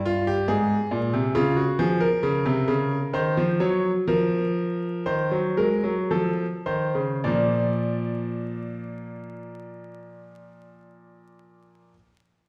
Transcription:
0.00 0.46 G2 medium
0.05 0.27 F4 loud
0.27 0.48 G4 loud
0.48 0.75 G#2 medium
0.48 1.32 G#4 medium
0.91 1.13 A#2 medium
1.13 1.35 C3 medium
1.35 1.62 C#3 loud
1.35 1.56 F4 medium
1.57 1.78 F#4 medium
1.79 2.06 F3 loud
1.79 2.00 G#4 medium
2.00 3.10 A#4 medium
2.23 2.45 C#3 loud
2.45 2.67 C3 medium
2.68 2.96 C#3 medium
3.14 3.36 D#3 medium
3.14 3.43 C5 medium
3.37 3.60 F3 medium
3.60 3.90 F#3 medium
3.60 3.90 C#5 medium
4.07 5.03 F3 medium
4.07 5.03 A#4 medium
5.06 5.31 D#3 medium
5.06 5.38 C5 medium
5.31 5.57 F#3 medium
5.57 5.83 G#3 medium
5.57 5.90 A#4 medium
5.84 6.10 F#3 medium
6.11 6.45 F3 medium
6.11 6.45 A4 medium
6.66 6.94 D#3 medium
6.66 7.02 C5 medium
6.95 7.23 C#3 medium
7.24 11.90 A#2 medium
7.24 11.93 F3 medium
7.24 11.93 A#3 medium
7.24 11.90 D5 medium

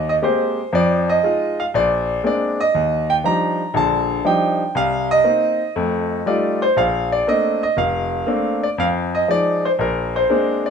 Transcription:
0.00 0.16 D#2 medium
0.09 0.14 D#5 medium
0.22 0.58 G#3 medium
0.22 0.59 A#3 soft
0.22 0.59 C4 soft
0.22 0.59 G4 medium
0.22 0.75 C5 medium
0.73 1.17 F2 medium
0.73 1.16 F3 medium
0.73 1.09 D5 medium
1.09 1.60 D#5 medium
1.23 1.59 G#3 soft
1.23 1.60 D#4 soft
1.23 1.60 F4 medium
1.60 1.65 F5 medium
1.74 2.18 A#1 medium
1.74 2.21 D5 medium
2.24 2.60 G#3 medium
2.24 2.60 A#3 medium
2.24 2.60 C4 soft
2.24 2.60 D4 medium
2.24 2.61 D5 medium
2.60 3.11 D#5 loud
2.75 3.18 D#2 medium
3.10 3.15 G5 loud
3.24 3.60 F3 medium
3.24 3.61 G3 soft
3.24 3.61 D4 soft
3.24 3.61 D#4 medium
3.24 3.77 A#5 medium
3.74 4.18 A#1 medium
3.74 4.18 D3 medium
3.74 4.27 A5 loud
4.25 4.61 F3 medium
4.25 4.61 G3 soft
4.25 4.61 D4 medium
4.25 4.61 D#4 medium
4.25 4.77 G5 medium
4.75 5.19 C2 medium
4.75 5.08 F5 loud
5.11 6.30 D#5 loud
5.24 5.61 A#3 medium
5.24 5.61 C4 soft
5.24 5.61 D#4 medium
5.76 6.20 F2 medium
5.76 6.20 A3 medium
6.26 6.62 G3 medium
6.26 6.63 A3 medium
6.26 6.63 D#4 medium
6.26 6.63 F4 medium
6.26 6.62 D5 medium
6.62 6.76 C5 medium
6.77 7.20 A#1 medium
6.77 7.09 F5 medium
7.12 7.26 D5 medium
7.27 7.63 A3 medium
7.27 7.63 A#3 soft
7.27 7.64 C4 soft
7.27 7.64 D4 medium
7.27 7.62 D#5 medium
7.63 7.77 D#5 medium
7.77 8.21 F1 medium
7.77 8.58 F5 medium
8.27 8.63 A3 medium
8.27 8.63 A#3 medium
8.27 8.64 C4 medium
8.27 8.64 D4 medium
8.63 8.68 D5 medium
8.78 9.22 F2 medium
8.78 8.87 F5 medium
9.15 9.28 D#5 medium
9.28 9.64 F3 medium
9.28 9.65 G#3 soft
9.28 9.65 D#4 medium
9.28 9.65 D5 loud
9.65 9.70 C5 medium
9.79 10.22 A#1 medium
9.79 10.61 A#4 medium
10.16 10.66 C5 medium
10.30 10.65 G#3 medium
10.30 10.65 A#3 medium
10.30 10.66 C4 medium
10.30 10.66 D4 medium
10.66 10.70 D5 medium

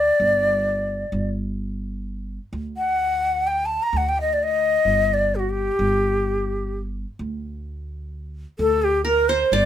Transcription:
0.00 1.29 D5 loud
0.20 1.03 G1 medium
1.12 2.37 G1 medium
2.53 3.77 D2 medium
2.77 3.48 F#5 loud
3.47 3.67 G5 loud
3.66 3.84 A5 medium
3.83 3.99 A#5 medium
3.93 4.76 D2 medium
3.97 4.10 F#5 medium
4.09 4.18 G5 medium
4.21 4.35 D#5 medium
4.33 4.45 D5 medium
4.43 5.15 D#5 loud
4.85 5.69 G1 medium
5.14 5.37 D5 medium
5.35 5.41 G4 medium
5.39 5.51 F#4 medium
5.50 6.78 G4 medium
5.79 7.04 G1 loud
7.19 8.44 D2 medium
8.59 9.42 D2 medium
8.59 8.83 A4 loud
8.82 9.05 G4 loud
9.05 9.65 A#4 medium
9.05 9.30 A#4 loud
9.29 9.55 C5 loud
9.29 9.65 C5 medium
9.52 9.65 G1 medium
9.52 9.65 D5 loud

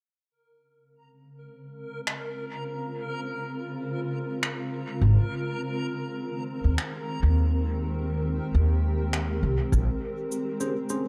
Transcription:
0.31 5.01 C#3 medium
0.31 9.74 A#4 medium
0.54 11.08 C4 medium
0.77 11.08 G#3 medium
1.25 11.08 A#4 medium
1.59 6.01 F4 medium
2.07 finger snap medium
4.43 finger snap medium
5.01 5.15 G#1 medium
5.01 9.72 D#3 medium
5.95 11.06 G4 medium
6.64 6.76 D#2 medium
6.78 finger snap medium
7.23 8.38 D#2 medium
8.54 9.40 D#2 medium
9.13 finger snap medium
9.43 9.56 C2 medium
9.72 9.86 A#1 medium
9.72 11.08 C#3 medium
9.72 kick loud
9.72 cabasa medium
10.18 11.08 F4 medium
10.32 cabasa medium
10.60 10.73 C#4 medium
10.60 10.73 G#4 medium
10.60 10.73 C5 medium
10.60 cabasa soft
10.89 11.08 C#4 medium
10.89 11.08 G#4 medium
10.89 11.08 C5 medium
10.89 cabasa medium

